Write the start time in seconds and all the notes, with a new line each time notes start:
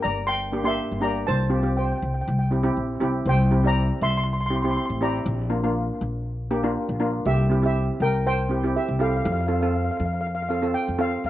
Already playing: A#3 D4 G4
0.02 G1 D5 A#5
0.27 G5 C6
0.52 A#3 D4 G4
0.64 A#3 D4 G4 E5 C6
0.92 G1
1.00 A#3 D4 G4 D5 A#5
1.27 C2 C5 A5
1.50 C4 F4 G4
1.63 C4 F4 G4
1.77 C5 G5
1.85 G5
1.92 G5
1.98 G5
2.02 C2 G5
2.14 G5
2.21 G5
2.28 C2 G5
2.39 G5
2.51 C4 E4 G4
2.63 C4 E4 G4
2.77 A#1
3.00 C2 C4 E4 G4
3.25 C2 C5 G5
3.51 C4 E4 G4
3.64 C4 E4 G4 D5 A#5
4.01 C2 E5 C6
4.11 C6
4.17 C6
4.24 C6
4.33 C6
4.41 C6
4.46 E4 C6
4.50 C4 G4
4.56 C6
4.62 C4 E4 G4 C6
4.71 C6
4.77 C6
4.86 A1 C6
5.01 C4 E4 G4 D5 A#5
5.26 A#1
5.50 A#3 D4 F4
5.64 A#3 D4 F4
6.01 A#1
6.51 A#3 D4 G4
6.63 A#3 D4 F4
6.89 A#1
7.00 A#3 D4 F4
7.25 C2 G4 E5
7.50 C4 E4 G4
7.62 C4 E4 G4 E5
8.00 C2 A#4 G5
8.26 C5 G5
8.49 C4 E4 G4
8.64 C4 E4 G4
8.76 G4 E5
8.88 C2
8.99 C4 E4 G4 A4 F5
9.08 F5
9.16 F5
9.25 F2 F5
9.32 F5
9.41 F5
9.47 C4 F4 A4 F5
9.54 F5
9.61 C4 F4 A4 F5
9.68 F5
9.76 F5
9.85 F5
9.91 F5
9.97 F2 F5
10.05 F5
10.13 F5
10.21 F5
10.27 F5
10.35 F5
10.42 F5
10.49 C4 F4 A4 F5
10.62 C4 F4 A4
10.74 G5
10.88 F2
10.99 C4 F4 A4 F5
11.24 F2 F5